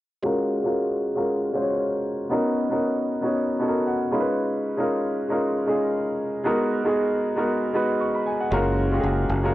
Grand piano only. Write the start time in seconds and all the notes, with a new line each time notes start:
0.23 G#3 C#4 F4 F#4 A#4
0.63 G#3 C#4 F4 F#4 A#4
1.14 G#3 C#4 F4 F#4 A#4
1.52 G#3 C#4 F4 F#4 C5
1.62 C#5
2.30 B3 C#4 D#4 F#4 A#4
2.70 B3 C#4 D#4 F#4 A#4
3.21 B3 C#4 D#4 F#4 C#5
3.59 B3 C#4 D#4 F#4 A4
3.68 A#4
3.86 F#5
4.11 G#3 C#4 D#4 F4 A#4 B5
4.20 B4
4.77 G#3 C#4 D#4 F4 A#4
5.28 G#3 C#4 D#4 F4 A#4
5.66 G#3 C#4 D#4 F4 G#4
6.44 G#3 B3 D#4 F#4 A#4
6.84 G#3 B3 D#4 F#4 G#4
7.35 G#3 B3 D#4 F#4 A#4
7.73 G#3 B3 D#4 F#4 B4
8.00 C#6
8.15 B5
8.26 G#5
8.40 F#5
8.50 G#3 C#4 F4 F#4 A#4
8.91 G#3 C#4 F4 F#4 G4
9.00 G#4
9.42 G#3 C#4 F4 F#4 A#4